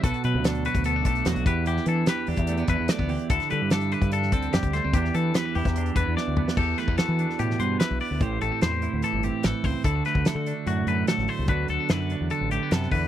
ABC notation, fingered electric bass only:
X:1
M:4/4
L:1/16
Q:1/4=147
K:Em
V:1 name="Fingered electric bass" clef=bass
B,,, z B,, D,,4 D,,3 B,,,2 E,, B,,, E,,2- | E,,2 E,2 z2 E,, E,,3 E,, E,, z D,,2 z | D,, z D, G,,4 G,,3 D,,2 F,, D,,2 D,, | E,,2 E,2 z2 E,, E,,3 E,, E,, z D,,2 z |
E,,2 z E,, z E,2 z A,,2 G,,2 z B,,, z D,, | A,,,2 A,,, z E,,3 D,, z G,,,2 z A,,, z ^C,, z | D,,2 z D,, z D,2 z F,,2 F,,2 z A,,, z C,, | D,,2 D,, z F,,3 E,, z A,,,2 z F,,2 E,,2 |]